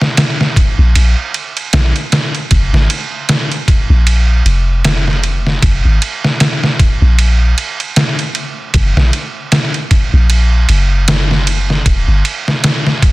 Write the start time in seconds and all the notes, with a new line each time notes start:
0.02 snare
0.17 snare, ride
0.41 snare
0.56 kick, ride
0.79 A#1
0.95 A#1, ride
1.34 ride
1.57 ride
1.73 A#1, snare, ride
1.96 ride
2.12 snare, ride
2.35 ride
2.51 F1, kick, ride
2.73 G#1, snare
2.90 ride
3.29 snare, ride
3.52 ride
3.68 kick, ride
3.90 A#1
4.07 ride
4.45 F1, ride
4.85 snare, ride
5.08 snare
5.24 ride
5.47 snare
5.62 F1, kick, ride
5.85 G#1
6.02 ride
6.25 snare
6.40 snare, ride
6.64 snare
6.79 kick, ride
7.02 A#1
7.19 ride
7.58 ride
7.80 ride
7.96 snare, ride
8.19 ride
8.35 ride
8.74 F#1, kick, ride
8.97 A#1, snare
9.13 ride
9.52 snare, ride
9.74 ride
9.91 kick, ride
10.13 A#1
10.30 ride
10.69 F#1, ride
11.08 snare, ride
11.31 snare
11.47 ride
11.70 snare
11.86 D#1, kick, ride
12.08 G1
12.25 ride
12.48 snare
12.64 snare, ride
12.87 snare
13.02 kick, ride